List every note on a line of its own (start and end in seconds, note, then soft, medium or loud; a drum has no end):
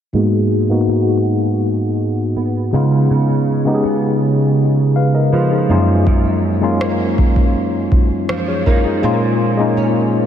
0.13 0.49 G#2 medium
0.13 3.64 G#3 medium
0.13 0.49 A#3 medium
0.13 0.49 B3 medium
0.13 0.50 D#4 medium
0.13 0.50 F#4 medium
0.69 1.62 G#2 medium
0.69 1.63 A#3 medium
0.69 1.63 B3 medium
0.69 1.63 D#4 medium
0.69 1.64 F#4 medium
0.88 2.81 F#4 medium
2.36 3.14 B3 medium
2.72 3.47 C#3 medium
2.72 3.09 C#3 medium
2.72 3.47 G#3 medium
2.72 3.48 B3 medium
2.72 3.48 D#4 medium
2.72 3.48 F4 medium
3.11 5.77 C#3 medium
3.65 4.59 C#3 medium
3.65 4.59 G#3 medium
3.65 4.59 B3 medium
3.65 4.60 D#4 medium
3.65 3.73 G4 medium
3.75 4.63 G#4 medium
3.85 5.77 B3 medium
4.96 5.14 B4 medium
4.96 5.13 F5 medium
5.15 5.32 A#4 medium
5.15 5.32 D#5 medium
5.33 6.10 F3 medium
5.33 5.51 F4 medium
5.33 5.51 B4 medium
5.52 5.70 D#4 medium
5.52 5.87 G#4 medium
5.69 6.43 F#2 medium
5.69 6.05 F#2 medium
5.69 6.44 G#3 medium
5.69 6.44 A#3 medium
5.69 6.44 C#4 medium
5.69 6.44 D#4 medium
5.69 6.45 F4 medium
6.07 9.03 F#2 medium
6.07 kick loud
6.61 7.55 F#2 medium
6.61 7.55 G#3 medium
6.61 7.55 A#3 medium
6.61 7.56 C#4 medium
6.61 7.56 D#4 medium
6.61 7.56 F4 medium
6.81 8.66 A#3 medium
6.81 cross-stick loud
7.18 kick loud
7.36 kick medium
7.92 kick medium
8.29 8.66 F3 medium
8.29 cross-stick loud
8.48 8.66 G#4 medium
8.48 8.65 C#5 medium
8.66 10.26 F3 medium
8.66 10.26 A#3 medium
8.66 9.11 D#4 medium
8.66 8.84 F4 medium
8.66 8.84 A#4 medium
8.66 kick medium
8.85 9.20 D#4 medium
8.85 9.20 G#4 medium
9.02 10.26 A#2 medium
9.02 9.37 G#3 medium
9.02 9.38 A#3 medium
9.02 9.38 C#4 medium
9.02 9.39 F4 medium
9.57 10.26 G#3 medium
9.57 10.26 A#3 medium
9.57 10.26 C#4 medium
9.57 10.26 D#4 medium
9.77 10.26 C#4 medium